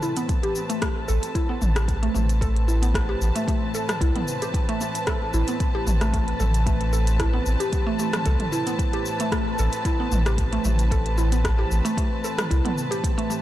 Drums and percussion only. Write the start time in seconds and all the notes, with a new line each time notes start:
0.03 cabasa
0.17 closed hi-hat, cabasa
0.29 kick, closed hi-hat, cabasa
0.43 closed hi-hat
0.55 cabasa
0.70 closed hi-hat, cabasa
0.82 kick, cross-stick, closed hi-hat, cabasa
1.08 cabasa
1.23 closed hi-hat, cabasa
1.35 kick, closed hi-hat, cabasa
1.62 mid tom, cabasa
1.76 cross-stick, closed hi-hat, cabasa
1.88 kick, closed hi-hat, cabasa
2.03 closed hi-hat
2.15 mid tom, cabasa
2.29 closed hi-hat, cabasa
2.41 kick, closed hi-hat, cabasa
2.56 closed hi-hat
2.69 cabasa
2.83 closed hi-hat, cabasa
2.94 kick, cross-stick, closed hi-hat, cabasa
3.22 cabasa
3.36 closed hi-hat, cabasa
3.48 kick, closed hi-hat, cabasa
3.75 cabasa
3.89 cross-stick, closed hi-hat, mid tom, cabasa
4.01 kick, closed hi-hat, cabasa
4.16 closed hi-hat, mid tom
4.28 cabasa
4.42 closed hi-hat, cabasa
4.54 kick, closed hi-hat, cabasa
4.69 closed hi-hat
4.81 cabasa
4.95 closed hi-hat, cabasa
5.07 kick, cross-stick, closed hi-hat, cabasa
5.34 cabasa
5.48 closed hi-hat, cabasa
5.60 kick, closed hi-hat, cabasa
5.87 mid tom, cabasa
6.01 cross-stick, closed hi-hat, cabasa
6.13 kick, closed hi-hat, cabasa
6.28 closed hi-hat
6.40 mid tom, cabasa
6.54 closed hi-hat, cabasa
6.67 kick, closed hi-hat, cabasa
6.81 closed hi-hat
6.93 cabasa
7.07 closed hi-hat, cabasa
7.20 kick, cross-stick, closed hi-hat, cabasa
7.46 cabasa
7.60 closed hi-hat, cabasa
7.73 kick, closed hi-hat, cabasa
7.99 cabasa
8.13 cross-stick, closed hi-hat, mid tom, cabasa
8.26 kick, closed hi-hat, cabasa
8.40 closed hi-hat, mid tom
8.53 cabasa
8.67 closed hi-hat, cabasa
8.79 kick, closed hi-hat, cabasa
8.93 closed hi-hat
9.06 cabasa
9.20 closed hi-hat, cabasa
9.32 kick, cross-stick, closed hi-hat, cabasa
9.59 cabasa
9.73 closed hi-hat, cabasa
9.85 kick, closed hi-hat, cabasa
10.12 mid tom, cabasa
10.26 cross-stick, closed hi-hat, cabasa
10.38 kick, closed hi-hat, cabasa
10.53 closed hi-hat
10.65 mid tom, cabasa
10.79 closed hi-hat, cabasa
10.91 kick, closed hi-hat, cabasa
11.06 closed hi-hat
11.18 cabasa
11.32 closed hi-hat, cabasa
11.44 kick, cross-stick, closed hi-hat, cabasa
11.71 cabasa
11.86 closed hi-hat, cabasa
11.97 kick, closed hi-hat, cabasa
12.24 cabasa
12.38 cross-stick, closed hi-hat, mid tom, cabasa
12.51 kick, closed hi-hat, cabasa
12.65 closed hi-hat, mid tom
12.78 cabasa
12.92 closed hi-hat, cabasa
13.04 kick, closed hi-hat, cabasa
13.19 closed hi-hat
13.31 cabasa